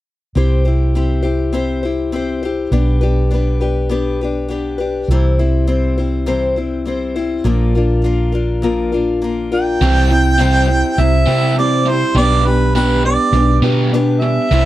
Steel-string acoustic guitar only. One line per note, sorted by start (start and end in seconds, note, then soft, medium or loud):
0.35 0.65 C4 medium
0.35 0.66 E4 medium
0.35 0.64 G4 medium
0.35 0.64 C5 medium
0.65 0.95 E4 soft
0.65 0.95 G4 soft
0.65 0.95 C5 soft
0.95 1.25 C4 soft
0.95 1.23 E4 medium
0.95 1.22 G4 medium
0.95 1.21 C5 medium
1.22 1.52 E4 soft
1.22 1.53 G4 soft
1.22 1.53 C5 soft
1.53 1.83 C4 medium
1.53 1.83 E4 medium
1.53 1.84 G4 medium
1.53 1.82 C5 medium
1.83 2.12 E4 soft
1.83 2.13 G4 soft
1.83 2.13 C5 soft
2.12 2.42 C4 soft
2.12 2.42 E4 medium
2.12 2.43 G4 medium
2.12 2.42 C5 medium
2.43 2.72 E4 soft
2.43 2.72 G4 soft
2.43 2.72 C5 soft
2.72 3.01 B3 medium
2.72 3.02 D4 medium
2.72 3.02 G4 medium
2.72 3.00 B4 medium
3.01 3.30 D4 soft
3.01 3.32 G4 soft
3.01 3.31 B4 soft
3.31 3.60 B3 medium
3.31 3.61 D4 medium
3.31 3.60 G4 medium
3.31 3.59 B4 medium
3.61 3.89 D4 soft
3.61 3.90 G4 soft
3.61 3.90 B4 soft
3.89 4.19 B3 medium
3.89 4.20 D4 medium
3.89 4.20 G4 medium
3.89 4.20 B4 medium
4.21 4.49 D4 soft
4.21 4.49 G4 soft
4.21 4.50 B4 soft
4.48 4.78 B3 soft
4.48 4.79 D4 soft
4.48 4.79 G4 medium
4.48 4.77 B4 medium
4.78 5.09 D4 soft
4.78 5.09 G4 soft
4.78 5.08 B4 soft
5.11 5.39 C3 medium
5.11 5.39 E3 medium
5.11 5.39 G3 medium
5.11 5.39 C4 medium
5.11 5.38 E4 medium
5.11 5.38 C5 medium
5.39 5.66 G3 soft
5.39 5.66 C4 soft
5.39 5.67 E4 medium
5.39 5.68 C5 medium
5.67 5.97 G3 medium
5.67 5.97 C4 medium
5.67 5.97 E4 medium
5.67 5.96 C5 medium
5.98 6.26 G3 soft
5.98 6.26 C4 soft
5.98 6.27 E4 soft
5.98 6.27 C5 soft
6.26 6.56 C3 medium
6.26 6.56 E3 medium
6.26 6.56 G3 medium
6.26 6.56 C4 medium
6.26 6.56 E4 medium
6.26 6.55 C5 medium
6.56 6.84 G3 soft
6.56 6.85 C4 soft
6.56 6.86 E4 soft
6.56 6.85 C5 soft
6.86 7.15 G3 soft
6.86 7.15 C4 medium
6.86 7.15 E4 medium
6.86 7.14 C5 medium
7.16 7.45 G3 soft
7.16 7.45 C4 soft
7.16 7.45 E4 soft
7.16 7.45 C5 soft
7.44 7.74 A#2 medium
7.44 7.74 F3 medium
7.44 7.74 A#3 medium
7.44 7.74 D4 medium
7.44 7.74 F4 medium
7.44 7.74 A#4 medium
7.75 8.01 A#3 soft
7.75 8.03 D4 soft
7.75 8.03 F4 soft
7.75 8.04 A#4 soft
8.02 8.32 A#3 soft
8.02 8.33 D4 medium
8.02 8.33 F4 medium
8.06 8.31 A#4 medium
8.32 8.62 A#3 soft
8.32 8.63 D4 soft
8.32 8.63 F4 soft
8.32 8.62 A#4 soft
8.62 8.92 A#2 medium
8.62 8.92 F3 medium
8.62 8.92 A#3 medium
8.62 8.93 D4 medium
8.62 8.91 F4 medium
8.62 8.91 A#4 medium
8.92 9.20 A#3 soft
8.92 9.21 D4 soft
8.92 9.22 F4 soft
8.92 9.21 A#4 soft
9.22 9.51 A#3 soft
9.22 9.51 D4 soft
9.22 9.51 F4 medium
9.22 9.50 A#4 medium
9.52 9.81 A#3 soft
9.52 9.81 D4 soft
9.52 9.81 F4 soft
9.52 9.81 A#4 medium
9.82 10.11 C3 medium
9.82 10.10 E3 medium
9.82 10.10 G3 medium
9.82 10.10 C4 medium
9.82 10.10 E4 medium
9.82 10.08 C5 medium
10.09 10.39 G3 soft
10.09 10.39 C4 soft
10.09 10.40 E4 soft
10.09 10.39 C5 soft
10.39 10.69 C3 medium
10.39 10.69 E3 medium
10.39 10.69 G3 medium
10.39 10.68 C4 medium
10.39 10.68 E4 medium
10.39 10.67 C5 medium
10.68 10.96 G3 soft
10.68 10.99 C4 soft
10.68 10.98 E4 soft
10.68 10.98 C5 medium
10.98 11.27 G3 soft
10.98 11.28 C4 medium
10.98 11.28 E4 medium
10.98 11.27 C5 medium
11.28 11.57 G3 soft
11.28 11.58 C4 soft
11.28 11.58 E4 soft
11.28 11.57 C5 soft
11.59 11.87 C3 medium
11.59 11.87 E3 medium
11.59 11.87 G3 medium
11.59 11.88 C4 medium
11.59 11.88 E4 medium
11.59 11.88 C5 medium
11.89 12.17 G3 soft
11.89 12.18 C4 soft
11.89 12.17 E4 soft
11.89 12.17 C5 soft
12.17 12.46 B3 medium
12.17 12.46 D4 medium
12.17 12.46 G4 medium
12.17 12.44 B4 medium
12.45 12.75 D4 soft
12.45 12.76 G4 soft
12.45 12.74 B4 soft
12.75 13.04 B3 medium
12.75 13.05 D4 medium
12.75 13.05 G4 medium
12.75 13.04 B4 medium
13.05 13.33 D4 soft
13.05 13.34 G4 soft
13.05 13.34 B4 soft
13.34 13.63 B3 soft
13.34 13.63 D4 medium
13.34 13.63 G4 soft
13.34 13.62 B4 medium
13.64 13.93 D4 soft
13.64 13.93 G4 soft
13.64 13.92 B4 soft
13.94 14.22 B3 medium
13.94 14.22 D4 medium
13.94 14.21 G4 medium
13.94 14.20 B4 medium
14.21 14.52 D4 soft
14.21 14.51 G4 soft
14.21 14.51 B4 soft
14.51 14.65 C3 medium
14.51 14.65 E3 medium
14.51 14.65 G3 medium
14.51 14.65 C4 medium
14.51 14.65 E4 medium
14.51 14.65 C5 medium